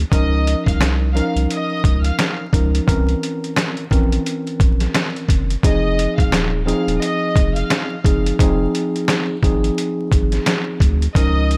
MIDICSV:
0, 0, Header, 1, 5, 480
1, 0, Start_track
1, 0, Key_signature, -4, "minor"
1, 0, Tempo, 689655
1, 82, Time_signature, 4, 2, 24, 8
1, 8055, End_track
2, 0, Start_track
2, 0, Title_t, "Violin section"
2, 0, Program_c, 0, 48
2, 90, Note_on_c, 0, 75, 97
2, 95, Note_on_c, 0, 87, 78
2, 444, Note_off_c, 0, 75, 0
2, 447, Note_off_c, 0, 87, 0
2, 459, Note_on_c, 0, 77, 72
2, 464, Note_on_c, 0, 89, 62
2, 550, Note_off_c, 0, 77, 0
2, 553, Note_off_c, 0, 89, 0
2, 789, Note_on_c, 0, 77, 83
2, 795, Note_on_c, 0, 89, 61
2, 921, Note_off_c, 0, 77, 0
2, 924, Note_off_c, 0, 89, 0
2, 1050, Note_on_c, 0, 75, 89
2, 1055, Note_on_c, 0, 87, 77
2, 1404, Note_off_c, 0, 75, 0
2, 1407, Note_off_c, 0, 87, 0
2, 1419, Note_on_c, 0, 77, 79
2, 1424, Note_on_c, 0, 89, 63
2, 1637, Note_off_c, 0, 77, 0
2, 1639, Note_off_c, 0, 89, 0
2, 3932, Note_on_c, 0, 75, 98
2, 3938, Note_on_c, 0, 87, 78
2, 4285, Note_off_c, 0, 75, 0
2, 4288, Note_off_c, 0, 87, 0
2, 4292, Note_on_c, 0, 77, 78
2, 4298, Note_on_c, 0, 89, 59
2, 4386, Note_off_c, 0, 77, 0
2, 4390, Note_off_c, 0, 89, 0
2, 4631, Note_on_c, 0, 77, 81
2, 4637, Note_on_c, 0, 89, 66
2, 4762, Note_off_c, 0, 77, 0
2, 4765, Note_off_c, 0, 89, 0
2, 4880, Note_on_c, 0, 75, 99
2, 4886, Note_on_c, 0, 87, 78
2, 5239, Note_off_c, 0, 75, 0
2, 5242, Note_off_c, 0, 87, 0
2, 5256, Note_on_c, 0, 77, 80
2, 5262, Note_on_c, 0, 89, 66
2, 5475, Note_off_c, 0, 77, 0
2, 5478, Note_off_c, 0, 89, 0
2, 7768, Note_on_c, 0, 75, 101
2, 7774, Note_on_c, 0, 87, 79
2, 8055, Note_off_c, 0, 75, 0
2, 8055, Note_off_c, 0, 87, 0
2, 8055, End_track
3, 0, Start_track
3, 0, Title_t, "Tine electric piano"
3, 0, Program_c, 1, 4
3, 84, Note_on_c, 1, 53, 89
3, 86, Note_on_c, 1, 61, 88
3, 89, Note_on_c, 1, 63, 83
3, 91, Note_on_c, 1, 70, 109
3, 755, Note_off_c, 1, 53, 0
3, 756, Note_off_c, 1, 61, 0
3, 758, Note_off_c, 1, 63, 0
3, 759, Note_off_c, 1, 70, 0
3, 798, Note_on_c, 1, 53, 88
3, 801, Note_on_c, 1, 61, 79
3, 803, Note_on_c, 1, 63, 82
3, 806, Note_on_c, 1, 70, 103
3, 1697, Note_off_c, 1, 53, 0
3, 1698, Note_off_c, 1, 61, 0
3, 1699, Note_off_c, 1, 63, 0
3, 1700, Note_off_c, 1, 70, 0
3, 1760, Note_on_c, 1, 53, 80
3, 1763, Note_on_c, 1, 61, 70
3, 1764, Note_on_c, 1, 63, 68
3, 1767, Note_on_c, 1, 70, 83
3, 1985, Note_off_c, 1, 53, 0
3, 1987, Note_off_c, 1, 61, 0
3, 1987, Note_off_c, 1, 63, 0
3, 1989, Note_off_c, 1, 70, 0
3, 1996, Note_on_c, 1, 52, 93
3, 1998, Note_on_c, 1, 60, 83
3, 2001, Note_on_c, 1, 61, 78
3, 2003, Note_on_c, 1, 70, 108
3, 2671, Note_off_c, 1, 52, 0
3, 2672, Note_off_c, 1, 60, 0
3, 2674, Note_off_c, 1, 61, 0
3, 2675, Note_off_c, 1, 70, 0
3, 2720, Note_on_c, 1, 52, 89
3, 2721, Note_on_c, 1, 60, 90
3, 2724, Note_on_c, 1, 61, 78
3, 2727, Note_on_c, 1, 70, 95
3, 3841, Note_off_c, 1, 52, 0
3, 3842, Note_off_c, 1, 60, 0
3, 3844, Note_off_c, 1, 61, 0
3, 3845, Note_off_c, 1, 70, 0
3, 3923, Note_on_c, 1, 53, 89
3, 3925, Note_on_c, 1, 60, 81
3, 3927, Note_on_c, 1, 63, 84
3, 3930, Note_on_c, 1, 68, 109
3, 4595, Note_off_c, 1, 53, 0
3, 4596, Note_off_c, 1, 60, 0
3, 4597, Note_off_c, 1, 63, 0
3, 4598, Note_off_c, 1, 68, 0
3, 4636, Note_on_c, 1, 53, 96
3, 4638, Note_on_c, 1, 60, 84
3, 4640, Note_on_c, 1, 63, 87
3, 4643, Note_on_c, 1, 68, 102
3, 5535, Note_off_c, 1, 53, 0
3, 5536, Note_off_c, 1, 60, 0
3, 5538, Note_off_c, 1, 63, 0
3, 5539, Note_off_c, 1, 68, 0
3, 5595, Note_on_c, 1, 53, 69
3, 5597, Note_on_c, 1, 60, 64
3, 5600, Note_on_c, 1, 63, 73
3, 5602, Note_on_c, 1, 68, 88
3, 5823, Note_off_c, 1, 53, 0
3, 5824, Note_off_c, 1, 60, 0
3, 5825, Note_off_c, 1, 63, 0
3, 5826, Note_off_c, 1, 68, 0
3, 5843, Note_on_c, 1, 53, 90
3, 5844, Note_on_c, 1, 60, 94
3, 5847, Note_on_c, 1, 63, 89
3, 5849, Note_on_c, 1, 68, 102
3, 6515, Note_off_c, 1, 53, 0
3, 6515, Note_off_c, 1, 60, 0
3, 6517, Note_off_c, 1, 63, 0
3, 6518, Note_off_c, 1, 68, 0
3, 6561, Note_on_c, 1, 53, 93
3, 6563, Note_on_c, 1, 60, 84
3, 6566, Note_on_c, 1, 63, 86
3, 6568, Note_on_c, 1, 68, 106
3, 7682, Note_off_c, 1, 53, 0
3, 7683, Note_off_c, 1, 60, 0
3, 7685, Note_off_c, 1, 63, 0
3, 7685, Note_off_c, 1, 68, 0
3, 7765, Note_on_c, 1, 53, 89
3, 7767, Note_on_c, 1, 61, 92
3, 7769, Note_on_c, 1, 63, 81
3, 7772, Note_on_c, 1, 70, 103
3, 8055, Note_off_c, 1, 53, 0
3, 8055, Note_off_c, 1, 61, 0
3, 8055, Note_off_c, 1, 63, 0
3, 8055, Note_off_c, 1, 70, 0
3, 8055, End_track
4, 0, Start_track
4, 0, Title_t, "Sub bass"
4, 0, Program_c, 2, 38
4, 83, Note_on_c, 2, 37, 104
4, 385, Note_off_c, 2, 37, 0
4, 464, Note_on_c, 2, 36, 95
4, 845, Note_off_c, 2, 36, 0
4, 946, Note_on_c, 2, 36, 85
4, 1024, Note_off_c, 2, 36, 0
4, 1282, Note_on_c, 2, 37, 97
4, 1473, Note_off_c, 2, 37, 0
4, 1761, Note_on_c, 2, 37, 95
4, 1953, Note_off_c, 2, 37, 0
4, 2003, Note_on_c, 2, 36, 112
4, 2194, Note_off_c, 2, 36, 0
4, 2723, Note_on_c, 2, 34, 98
4, 2913, Note_off_c, 2, 34, 0
4, 3202, Note_on_c, 2, 34, 92
4, 3393, Note_off_c, 2, 34, 0
4, 3681, Note_on_c, 2, 30, 90
4, 3872, Note_off_c, 2, 30, 0
4, 3923, Note_on_c, 2, 29, 103
4, 4225, Note_off_c, 2, 29, 0
4, 4304, Note_on_c, 2, 27, 95
4, 4685, Note_off_c, 2, 27, 0
4, 4786, Note_on_c, 2, 27, 88
4, 4864, Note_off_c, 2, 27, 0
4, 5122, Note_on_c, 2, 29, 94
4, 5313, Note_off_c, 2, 29, 0
4, 5601, Note_on_c, 2, 30, 97
4, 5792, Note_off_c, 2, 30, 0
4, 5843, Note_on_c, 2, 29, 102
4, 6033, Note_off_c, 2, 29, 0
4, 6562, Note_on_c, 2, 32, 99
4, 6753, Note_off_c, 2, 32, 0
4, 7042, Note_on_c, 2, 32, 96
4, 7233, Note_off_c, 2, 32, 0
4, 7521, Note_on_c, 2, 38, 94
4, 7712, Note_off_c, 2, 38, 0
4, 7763, Note_on_c, 2, 37, 110
4, 8055, Note_off_c, 2, 37, 0
4, 8055, End_track
5, 0, Start_track
5, 0, Title_t, "Drums"
5, 81, Note_on_c, 9, 36, 111
5, 89, Note_on_c, 9, 42, 106
5, 151, Note_off_c, 9, 36, 0
5, 159, Note_off_c, 9, 42, 0
5, 329, Note_on_c, 9, 42, 73
5, 399, Note_off_c, 9, 42, 0
5, 462, Note_on_c, 9, 36, 88
5, 475, Note_on_c, 9, 42, 50
5, 532, Note_off_c, 9, 36, 0
5, 544, Note_off_c, 9, 42, 0
5, 561, Note_on_c, 9, 40, 88
5, 566, Note_on_c, 9, 38, 117
5, 574, Note_on_c, 9, 42, 86
5, 630, Note_off_c, 9, 40, 0
5, 636, Note_off_c, 9, 38, 0
5, 643, Note_off_c, 9, 42, 0
5, 812, Note_on_c, 9, 42, 65
5, 881, Note_off_c, 9, 42, 0
5, 950, Note_on_c, 9, 42, 51
5, 1020, Note_off_c, 9, 42, 0
5, 1047, Note_on_c, 9, 42, 87
5, 1117, Note_off_c, 9, 42, 0
5, 1281, Note_on_c, 9, 36, 99
5, 1287, Note_on_c, 9, 42, 67
5, 1350, Note_off_c, 9, 36, 0
5, 1356, Note_off_c, 9, 42, 0
5, 1423, Note_on_c, 9, 42, 53
5, 1493, Note_off_c, 9, 42, 0
5, 1522, Note_on_c, 9, 40, 97
5, 1523, Note_on_c, 9, 42, 98
5, 1528, Note_on_c, 9, 38, 118
5, 1591, Note_off_c, 9, 40, 0
5, 1593, Note_off_c, 9, 42, 0
5, 1597, Note_off_c, 9, 38, 0
5, 1759, Note_on_c, 9, 36, 93
5, 1768, Note_on_c, 9, 42, 80
5, 1829, Note_off_c, 9, 36, 0
5, 1838, Note_off_c, 9, 42, 0
5, 1912, Note_on_c, 9, 42, 61
5, 1981, Note_off_c, 9, 42, 0
5, 2002, Note_on_c, 9, 36, 110
5, 2009, Note_on_c, 9, 42, 103
5, 2071, Note_off_c, 9, 36, 0
5, 2079, Note_off_c, 9, 42, 0
5, 2148, Note_on_c, 9, 42, 35
5, 2217, Note_off_c, 9, 42, 0
5, 2250, Note_on_c, 9, 42, 73
5, 2319, Note_off_c, 9, 42, 0
5, 2395, Note_on_c, 9, 42, 49
5, 2464, Note_off_c, 9, 42, 0
5, 2481, Note_on_c, 9, 40, 92
5, 2487, Note_on_c, 9, 38, 115
5, 2494, Note_on_c, 9, 42, 91
5, 2551, Note_off_c, 9, 40, 0
5, 2556, Note_off_c, 9, 38, 0
5, 2563, Note_off_c, 9, 42, 0
5, 2624, Note_on_c, 9, 42, 37
5, 2693, Note_off_c, 9, 42, 0
5, 2721, Note_on_c, 9, 36, 86
5, 2732, Note_on_c, 9, 42, 64
5, 2791, Note_off_c, 9, 36, 0
5, 2801, Note_off_c, 9, 42, 0
5, 2870, Note_on_c, 9, 42, 52
5, 2940, Note_off_c, 9, 42, 0
5, 2967, Note_on_c, 9, 42, 91
5, 3037, Note_off_c, 9, 42, 0
5, 3112, Note_on_c, 9, 42, 36
5, 3182, Note_off_c, 9, 42, 0
5, 3200, Note_on_c, 9, 36, 100
5, 3206, Note_on_c, 9, 42, 68
5, 3270, Note_off_c, 9, 36, 0
5, 3276, Note_off_c, 9, 42, 0
5, 3343, Note_on_c, 9, 42, 53
5, 3347, Note_on_c, 9, 38, 34
5, 3412, Note_off_c, 9, 42, 0
5, 3416, Note_off_c, 9, 38, 0
5, 3441, Note_on_c, 9, 40, 93
5, 3443, Note_on_c, 9, 42, 98
5, 3447, Note_on_c, 9, 38, 121
5, 3511, Note_off_c, 9, 40, 0
5, 3512, Note_off_c, 9, 42, 0
5, 3517, Note_off_c, 9, 38, 0
5, 3594, Note_on_c, 9, 42, 35
5, 3664, Note_off_c, 9, 42, 0
5, 3679, Note_on_c, 9, 36, 92
5, 3688, Note_on_c, 9, 42, 81
5, 3749, Note_off_c, 9, 36, 0
5, 3758, Note_off_c, 9, 42, 0
5, 3831, Note_on_c, 9, 42, 58
5, 3901, Note_off_c, 9, 42, 0
5, 3921, Note_on_c, 9, 36, 108
5, 3928, Note_on_c, 9, 42, 104
5, 3991, Note_off_c, 9, 36, 0
5, 3998, Note_off_c, 9, 42, 0
5, 4169, Note_on_c, 9, 42, 73
5, 4238, Note_off_c, 9, 42, 0
5, 4302, Note_on_c, 9, 36, 86
5, 4314, Note_on_c, 9, 42, 49
5, 4371, Note_off_c, 9, 36, 0
5, 4384, Note_off_c, 9, 42, 0
5, 4400, Note_on_c, 9, 40, 91
5, 4406, Note_on_c, 9, 38, 114
5, 4413, Note_on_c, 9, 42, 90
5, 4470, Note_off_c, 9, 40, 0
5, 4476, Note_off_c, 9, 38, 0
5, 4483, Note_off_c, 9, 42, 0
5, 4652, Note_on_c, 9, 42, 67
5, 4722, Note_off_c, 9, 42, 0
5, 4791, Note_on_c, 9, 42, 52
5, 4860, Note_off_c, 9, 42, 0
5, 4888, Note_on_c, 9, 42, 90
5, 4957, Note_off_c, 9, 42, 0
5, 5120, Note_on_c, 9, 36, 99
5, 5126, Note_on_c, 9, 42, 70
5, 5190, Note_off_c, 9, 36, 0
5, 5196, Note_off_c, 9, 42, 0
5, 5263, Note_on_c, 9, 42, 54
5, 5333, Note_off_c, 9, 42, 0
5, 5361, Note_on_c, 9, 40, 93
5, 5363, Note_on_c, 9, 42, 95
5, 5367, Note_on_c, 9, 38, 117
5, 5431, Note_off_c, 9, 40, 0
5, 5432, Note_off_c, 9, 42, 0
5, 5437, Note_off_c, 9, 38, 0
5, 5599, Note_on_c, 9, 36, 92
5, 5608, Note_on_c, 9, 42, 80
5, 5669, Note_off_c, 9, 36, 0
5, 5678, Note_off_c, 9, 42, 0
5, 5751, Note_on_c, 9, 42, 59
5, 5821, Note_off_c, 9, 42, 0
5, 5841, Note_on_c, 9, 36, 108
5, 5848, Note_on_c, 9, 42, 108
5, 5910, Note_off_c, 9, 36, 0
5, 5918, Note_off_c, 9, 42, 0
5, 6089, Note_on_c, 9, 42, 72
5, 6158, Note_off_c, 9, 42, 0
5, 6234, Note_on_c, 9, 42, 50
5, 6304, Note_off_c, 9, 42, 0
5, 6320, Note_on_c, 9, 40, 91
5, 6326, Note_on_c, 9, 38, 116
5, 6333, Note_on_c, 9, 42, 86
5, 6389, Note_off_c, 9, 40, 0
5, 6395, Note_off_c, 9, 38, 0
5, 6402, Note_off_c, 9, 42, 0
5, 6561, Note_on_c, 9, 36, 83
5, 6571, Note_on_c, 9, 42, 68
5, 6630, Note_off_c, 9, 36, 0
5, 6641, Note_off_c, 9, 42, 0
5, 6710, Note_on_c, 9, 42, 51
5, 6780, Note_off_c, 9, 42, 0
5, 6807, Note_on_c, 9, 42, 90
5, 6876, Note_off_c, 9, 42, 0
5, 7040, Note_on_c, 9, 36, 96
5, 7046, Note_on_c, 9, 42, 70
5, 7110, Note_off_c, 9, 36, 0
5, 7116, Note_off_c, 9, 42, 0
5, 7183, Note_on_c, 9, 42, 52
5, 7187, Note_on_c, 9, 38, 35
5, 7252, Note_off_c, 9, 42, 0
5, 7256, Note_off_c, 9, 38, 0
5, 7282, Note_on_c, 9, 40, 95
5, 7283, Note_on_c, 9, 42, 103
5, 7288, Note_on_c, 9, 38, 120
5, 7351, Note_off_c, 9, 40, 0
5, 7353, Note_off_c, 9, 42, 0
5, 7357, Note_off_c, 9, 38, 0
5, 7519, Note_on_c, 9, 36, 94
5, 7528, Note_on_c, 9, 42, 81
5, 7589, Note_off_c, 9, 36, 0
5, 7598, Note_off_c, 9, 42, 0
5, 7672, Note_on_c, 9, 42, 58
5, 7741, Note_off_c, 9, 42, 0
5, 7761, Note_on_c, 9, 36, 114
5, 7769, Note_on_c, 9, 42, 100
5, 7831, Note_off_c, 9, 36, 0
5, 7839, Note_off_c, 9, 42, 0
5, 8009, Note_on_c, 9, 42, 73
5, 8055, Note_off_c, 9, 42, 0
5, 8055, End_track
0, 0, End_of_file